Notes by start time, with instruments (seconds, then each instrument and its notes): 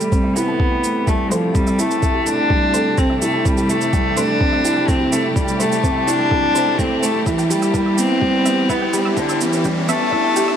Already playing: string section C3 A3 E4 G4, cello G3, felt piano G3 A3, riser
0.01 shaker
0.12 felt piano C4, synth arpeggio sound C5, kick, shaker
0.24 synth arpeggio sound E5
0.36 cello B3, felt piano E4, synth arpeggio sound G4, shaker
0.48 synth arpeggio sound A5
0.60 felt piano C4, synth arpeggio sound A4, kick
0.72 synth arpeggio sound G4
0.84 felt piano A3, shaker
1.07 felt piano G3, cello A3, synth arpeggio sound G4, kick, shaker
1.31 cello F3, felt piano A3, synth arpeggio sound C5, shaker
1.55 cello G3, felt piano C4, synth arpeggio sound C5, kick, shaker
1.67 synth arpeggio sound E5, shaker
1.79 cello A3, felt piano E4, synth arpeggio sound G4, shaker
1.91 synth arpeggio sound A5, shaker
2.03 felt piano C4, synth arpeggio sound A4, kick, shaker
2.15 synth arpeggio sound G4
2.26 felt piano A3, cello D4, shaker
2.50 felt piano G3, synth arpeggio sound G4, kick
2.74 felt piano A3, synth arpeggio sound C5, shaker
2.98 cello C4, felt piano C4, synth arpeggio sound C5, kick, shaker
3.10 synth arpeggio sound E5
3.22 cello A3, felt piano E4, synth arpeggio sound G4, shaker
3.34 synth arpeggio sound A5
3.45 cello G3, felt piano C4, synth arpeggio sound A4, kick, shaker
3.57 synth arpeggio sound G4, shaker
3.69 cello A3, felt piano A3, shaker
3.81 shaker
3.93 felt piano G3, synth arpeggio sound G4, kick, shaker
4.17 felt piano A3, cello D4, synth arpeggio sound C5, shaker
4.41 felt piano C4, synth arpeggio sound C5, kick
4.52 synth arpeggio sound E5
4.65 felt piano E4, synth arpeggio sound G4, shaker
4.76 synth arpeggio sound A5
4.88 cello C4, felt piano C4, synth arpeggio sound A4, kick, shaker
5.00 synth arpeggio sound G4
5.12 cello A3, felt piano A3, shaker
5.36 cello G3, felt piano G3, synth arpeggio sound G4, kick, shaker
5.48 shaker
5.60 felt piano A3, cello A3, synth arpeggio sound C5, shaker
5.72 shaker
5.83 felt piano C4, synth arpeggio sound C5, kick, shaker
5.95 synth arpeggio sound E5
6.07 cello D4, felt piano E4, synth arpeggio sound G4, shaker
6.19 synth arpeggio sound A5
6.31 felt piano C4, synth arpeggio sound A4, kick
6.43 synth arpeggio sound G4
6.55 synth arpeggio sound C5, felt piano C5, shaker
6.79 felt piano A3, cello C4, synth arpeggio sound A4, kick, shaker
7.03 felt piano A3, cello A3, synth arpeggio sound C5, shaker
7.26 cello E3, string section G3, felt piano E4, synth arpeggio sound E5, kick, shaker
7.38 synth arpeggio sound G5, shaker
7.50 cello G3, synth arpeggio sound G4, felt piano G4, shaker
7.62 synth arpeggio sound E6, shaker
7.74 felt piano E4, synth arpeggio sound B4, kick, shaker
7.86 synth arpeggio sound E6
7.98 felt piano B3, cello C4, shaker
8.22 felt piano G3, synth arpeggio sound G4, kick
8.45 felt piano B3, synth arpeggio sound E5, shaker
8.69 cello B3, felt piano E4, synth arpeggio sound E5, kick, shaker
8.82 synth arpeggio sound G5
8.93 cello G3, synth arpeggio sound G4, felt piano G4, shaker
9.05 synth arpeggio sound E6
9.17 cello D3, felt piano E4, synth arpeggio sound B4, kick, shaker
9.29 synth arpeggio sound E6, shaker
9.41 cello E3, felt piano B3, shaker
9.53 shaker
9.65 felt piano G3, synth arpeggio sound G4, kick, shaker
9.88 cello A3, felt piano B3, synth arpeggio sound E5, shaker
10.12 felt piano E4, synth arpeggio sound E5, kick
10.24 synth arpeggio sound G5
10.36 synth arpeggio sound G4, felt piano G4, shaker
10.48 synth arpeggio sound E6